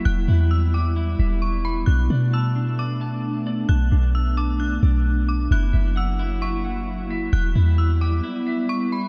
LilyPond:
<<
  \new Staff \with { instrumentName = "Synth bell" } { \time 4/4 \key b \minor \tempo 4 = 132 fis'''4 e'''8 d'''8 r4 cis'''8 b''8 | fis'''4 e'''4 d'''4 r4 | fis'''4 e'''8 d'''8 fis'''4. d'''8 | fis'''4 e'''4 cis'''4 r4 |
fis'''4 e'''8 d'''8 r4 cis'''8 b''8 | }
  \new Staff \with { instrumentName = "Clean electric guitar" } { \time 4/4 \key b \minor g''8 e'4 g''8 e'8 e''4. | d'8 d''8 a''8 d'8 d''8 a''4 d''8 | a''8 d'4 a''8 d'8 d''4. | e'8 e''8 fis''8 e'8 e''8 fis''4 e''8 |
g''8 e'4 g''8 e'8 e''4. | }
  \new Staff \with { instrumentName = "Ambient pad" } { \time 4/4 \key b \minor << { <g e'>1 | <a d'>1~ | <a d'>1 | <fis e'>1 |
<g e'>1 | } \\ { b1~ | b1~ | b1 | ais1 |
b1 | } >> }
  \new Staff \with { instrumentName = "808-style bass" } { \clef bass \time 4/4 \key b \minor e,,8 e,2 e,,4. | b,,8 b,2.~ b,8 | b,,8 b,,2 b,,4. | fis,,8 fis,,2.~ fis,,8 |
e,,8 e,4. r2 | }
>>